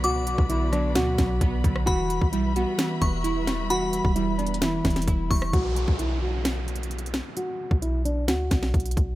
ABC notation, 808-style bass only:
X:1
M:4/4
L:1/16
Q:1/4=131
K:Bm
V:1 name="808-style bass" clef=bass
C,,3/2 B,,,3/2 B,,,4- B,,, D,,2 B,,,2 B,,,2 B,,,2 | E,,,3 B,,,4 z3 E,,,6- | E,,,3 E,,,6- E,,, E,,,2 E,,,2 E,,,2 | B,,,3 B,,,12 z |
z3 B,,,4- B,,, D,,2 B,,,2 B,,,2 B,,,2 |]